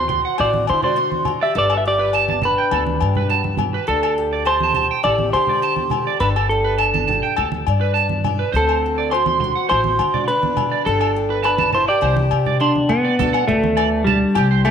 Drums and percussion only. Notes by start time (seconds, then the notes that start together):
0.10 low conga
0.38 low agogo
0.54 high conga
0.67 low agogo
0.83 low conga
1.12 high conga
1.25 low conga, low agogo
1.70 low agogo
2.13 low agogo
2.28 high conga
2.42 low conga
2.71 high conga, low agogo
2.86 high conga
3.01 low agogo
3.15 low conga
3.44 high conga
3.57 high conga, low conga, low agogo
4.03 low agogo
4.46 low agogo
4.60 high conga
4.73 low conga
5.04 low agogo
5.19 high conga
5.34 low agogo
5.47 low conga
5.76 high conga
5.90 low conga, low agogo
6.36 low agogo
6.78 low agogo
6.94 high conga
7.08 low conga
7.36 low agogo
7.52 high conga
7.67 low agogo
8.09 high conga
8.24 low conga, low agogo
8.69 low agogo
9.11 low agogo
9.26 high conga
9.40 low conga
9.69 low agogo
9.84 high conga
9.99 low agogo
10.14 low conga
10.43 high conga
10.57 low conga, low agogo
11.01 low agogo
11.44 low agogo
11.58 high conga
11.73 low conga
12.02 high conga, low agogo
12.17 high conga
12.31 low agogo
12.46 low conga
12.76 high conga
12.89 low conga, low agogo
13.19 low conga
13.34 low agogo
13.48 low conga
13.64 high conga
13.77 low agogo
14.07 low conga
14.35 low agogo
14.65 low agogo